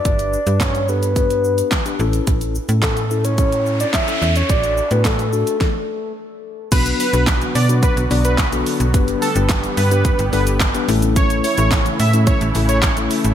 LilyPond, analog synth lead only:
\new Staff \with { instrumentName = "Analog synth lead" } { \time 4/4 \key b \minor \tempo 4 = 108 r1 | r1 | r1 | b'8 b'8. r16 d''16 r16 b'16 r8 b'8 r8. |
r8 a'16 r8. b'8. r16 b'16 r4 r16 | cis''8 cis''8. r16 e''16 r16 cis''16 r8 cis''8 r8. | }